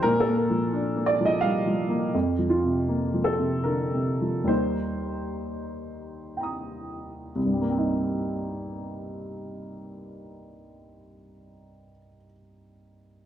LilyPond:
<<
  \new Staff \with { instrumentName = "Upright piano" } { \time 3/4 \key c \minor \tempo 4 = 63 << { r2. | r2. | r2 <g'' bes'' ees'''>4 | <c, g, g bes c' ees'>2.~ |
<c, g, g bes c' ees'>2. | } \\ { bes'16 a'16 bes'4 d''16 ees''16 f''4 | r8 f'4 a'8 bes'4 | c''2~ c''8 r8 | r2. |
r2. | } >> }
  \new Staff \with { instrumentName = "Upright piano" } { \clef bass \time 3/4 \key c \minor \tuplet 3/2 { bes,8 bes8 f8 d'8 bes8 f8 g8 f8 bes8 } | \tuplet 3/2 { f,8 f8 c8 bes8 f8 c8 d8 c8 f8 } | <ees, g bes ees'>2. | r2. |
r2. | }
>>